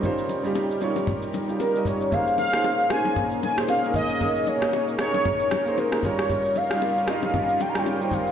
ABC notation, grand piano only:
X:1
M:4/4
L:1/16
Q:"Swing 16ths" 1/4=115
K:Bbdor
V:1 name="Grand piano"
[G,DEFc]2 z [G,DEFG]2 z [G,DEFd]4 z [G,DEFG]2 [G,DEFe]2 z | [B,DEAc]2 z [B,DEAc]2 z [B,DEAc]4 z [B,DEAc]2 [B,DEAB]2 z | [B,DEAB]2 z [B,DEAe]2 z [B,DEAd]4 z [B,DEAc]2 [B,DEAB] [G,DEFd]2- | [G,DEFd]2 z [G,DEFG]2 z [G,DEFe]4 z [G,DEFd]2 [G,DEFc]2 z |]